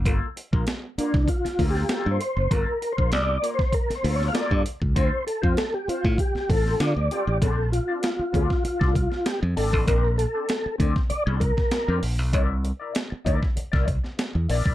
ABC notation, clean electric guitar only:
X:1
M:4/4
L:1/16
Q:1/4=98
K:Bblyd
V:1 name="Clean electric guitar"
[B,FA] z2 [B,FB] z2 [B,FB] z3 [B,FA] [B,FA] [B,FA]2 z2 | [B,FA] z2 [B,FB] z2 [B,FB] z3 [B,FA] [B,FA] [B,FA]2 z2 | [CFA] z2 [CFc] z2 [CFc] z3 [CFA] [CFA] z2 [CFA] z | [CDA] z2 [CDA] z2 [CDA] z2 [CDA] z4 [CDA] [CDA] |
[CDB] z2 [CDA] z2 [CDA] z2 [CDA] z3 [CDB] z2 | [EBd] z2 [EBd] z2 [EBd] z2 [EBd] z4 [EBd] [EBd] |]